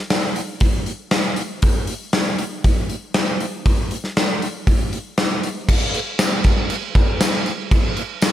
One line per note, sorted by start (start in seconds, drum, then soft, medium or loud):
0.10 snare medium
0.10 open hi-hat medium
0.36 open hi-hat medium
0.60 kick medium
0.60 open hi-hat medium
0.86 open hi-hat soft
1.11 snare loud
1.11 open hi-hat medium
1.36 open hi-hat medium
1.62 kick loud
1.62 open hi-hat medium
1.87 open hi-hat medium
2.13 snare loud
2.13 open hi-hat medium
2.38 open hi-hat medium
2.64 kick medium
2.64 open hi-hat medium
2.90 open hi-hat soft
3.14 snare loud
3.14 open hi-hat medium
3.40 open hi-hat medium
3.66 kick medium
3.66 open hi-hat medium
3.91 open hi-hat soft
4.04 snare soft
4.17 snare medium
4.17 open hi-hat medium
4.42 open hi-hat medium
4.67 kick loud
4.67 open hi-hat medium
4.93 open hi-hat soft
5.18 snare loud
5.18 open hi-hat medium
5.43 open hi-hat medium
5.69 kick loud
5.69 crash loud
5.69 crash medium
5.94 crash medium
6.19 snare loud
6.19 tambourine loud
6.19 crash medium
6.44 kick medium
6.44 snare soft
6.44 crash medium
6.70 crash medium
6.95 kick medium
6.95 crash medium
7.20 snare loud
7.20 tambourine loud
7.20 crash medium
7.46 crash medium
7.71 kick loud
7.71 crash medium
7.97 crash medium
8.22 snare loud
8.22 tambourine loud
8.22 crash medium